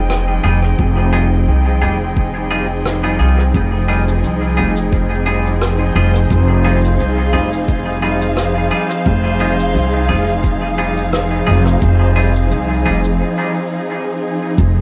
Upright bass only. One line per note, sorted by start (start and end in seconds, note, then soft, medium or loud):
0.00 0.41 F1 medium
0.44 0.75 F1 medium
0.79 1.45 F1 medium
1.48 1.84 C2 medium
1.82 3.17 F1 medium
3.20 3.51 C2 medium
3.54 4.21 F1 medium
4.23 4.60 C2 medium
4.58 5.93 F1 medium
5.96 6.27 F1 medium
6.30 6.97 F1 medium
6.99 7.35 C2 medium
7.34 8.69 F1 medium
9.06 9.72 F1 medium
9.75 10.11 C2 medium
10.09 11.44 F1 medium
11.47 11.78 F1 medium
11.82 12.48 F1 medium
12.51 12.87 C2 medium
12.86 13.20 F1 medium
14.58 14.81 F1 loud